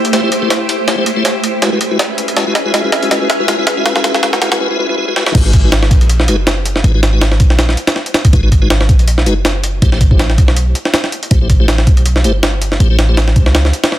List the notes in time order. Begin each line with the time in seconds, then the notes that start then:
0.05 closed hi-hat
0.13 A3 E4 G4 C5, snare, closed hi-hat
0.23 A3 E4 G4 C5
0.32 closed hi-hat
0.42 A3 E4 G4 C5
0.50 snare, closed hi-hat
0.69 closed hi-hat
0.88 A3 E4 G4 C5, snare, closed hi-hat
0.98 A3 E4 G4 C5
1.06 closed hi-hat
1.16 A3 E4 G4 C5
1.25 snare, closed hi-hat
1.44 closed hi-hat
1.62 G#3 E4 F#4 B4, snare, closed hi-hat
1.72 G#3 E4 F#4 B4
1.81 closed hi-hat
1.91 G#3 E4 F#4 B4
1.99 snare, closed hi-hat
2.18 closed hi-hat
2.28 closed hi-hat
2.37 G#3 E4 F#4 B4, snare, closed hi-hat
2.47 G#3 E4 F#4 B4
2.55 snare, closed hi-hat
2.66 G#3 E4 F#4 B4
2.74 G#3 E4 F#4 B4, snare, closed hi-hat
2.84 G#3 E4 F#4 B4
2.92 snare, closed hi-hat
3.03 G#3 E4 F#4 B4, closed hi-hat
3.11 G#3 E4 F#4 B4, snare, closed hi-hat
3.21 G#3 E4 F#4 B4
3.30 snare, closed hi-hat
3.40 G#3 E4 F#4 B4
3.48 G#3 E4 F#4 B4, snare, closed hi-hat
3.59 G#3 E4 F#4 B4
3.67 snare, closed hi-hat
3.77 G#3 E4 F#4 B4
3.86 G#3 E4 F#4 B4, snare, closed hi-hat
3.96 G#3 E4 F#4 B4, snare
4.04 G#3 E4 F#4 B4, snare, closed hi-hat
4.14 G#3 E4 F#4 B4, snare
4.23 G#3 E4 F#4 B4, snare, closed hi-hat
4.33 G#3 E4 F#4 B4, snare
4.42 G#3 E4 F#4 B4, snare, closed hi-hat
4.52 G#3 E4 F#4 B4, snare, closed hi-hat
4.60 G#3 E4 F#4 B4
4.71 G#3 E4 F#4 B4
4.79 G#3 E4 F#4 B4
4.89 G#3 E4 F#4 B4
4.98 G#3 E4 F#4 B4
5.08 G#3 E4 F#4 B4
5.16 G#3 E4 F#4 B4, snare
5.26 G#3 E4 F#4 B4, snare
5.35 G#1 G#3 D#4 F#4 B4, kick, closed hi-hat, crash
5.45 G#3 D#4 F#4 B4
5.53 kick, closed hi-hat
5.64 G#3 D#4 F#4 B4
5.72 snare, closed hi-hat
5.83 snare
5.91 A#1, kick, closed hi-hat
6.01 closed hi-hat
6.09 closed hi-hat
6.20 snare
6.28 F#1 G#3 D#4 F#4 B4, closed hi-hat
6.47 snare, closed hi-hat
6.66 closed hi-hat
6.76 snare
6.84 G#1 G#3 D#4 F#4 B4, closed hi-hat
6.94 G#3 D#4 F#4 B4
7.03 snare, closed hi-hat
7.13 G#3 D#4 F#4 B4
7.21 snare, closed hi-hat
7.32 snare
7.40 A#1, kick, closed hi-hat
7.50 snare
7.59 snare, closed hi-hat
7.69 snare
7.77 closed hi-hat
7.87 snare, closed hi-hat
7.96 snare
8.06 closed hi-hat
8.14 snare, closed hi-hat
8.25 kick, closed hi-hat
8.33 G#1 G#3 D#4 F#4 B4, kick, closed hi-hat
8.43 G#3 D#4 F#4 B4
8.52 kick, closed hi-hat
8.62 G#3 D#4 F#4 B4
8.70 snare, closed hi-hat
8.81 snare
8.89 A#1, kick, closed hi-hat
8.99 closed hi-hat
9.08 closed hi-hat
9.18 snare
9.26 F#1 G#3 D#4 F#4 B4, closed hi-hat
9.45 snare, closed hi-hat
9.64 closed hi-hat
9.82 A1 A3 E4 G4 C5, kick, closed hi-hat
9.92 A3 E4 G4 C5, snare
10.01 kick, closed hi-hat
10.11 A3 E4 G4 C5, kick
10.19 snare, closed hi-hat
10.30 snare
10.38 B1, kick, closed hi-hat
10.48 snare
10.56 closed hi-hat
10.75 closed hi-hat
10.85 snare
10.94 snare, closed hi-hat
11.04 snare
11.12 closed hi-hat
11.23 closed hi-hat
11.31 A1 A3 E4 G4 C5, kick, closed hi-hat
11.41 A3 E4 G4 C5
11.50 kick, closed hi-hat
11.60 A3 E4 G4 C5
11.68 snare, closed hi-hat
11.78 snare
11.87 B1, kick, closed hi-hat
11.97 closed hi-hat
12.06 closed hi-hat
12.16 snare
12.24 G1 A3 E4 G4 C5, closed hi-hat
12.43 snare, closed hi-hat
12.62 closed hi-hat
12.72 snare
12.80 A1 A3 E4 G4 C5, closed hi-hat
12.90 A3 E4 G4 C5
12.99 snare, closed hi-hat
13.09 A3 E4 G4 C5
13.17 snare, closed hi-hat
13.28 snare
13.36 C#2, kick, closed hi-hat
13.46 snare
13.55 snare, closed hi-hat
13.65 snare
13.73 closed hi-hat
13.84 snare, closed hi-hat
13.92 snare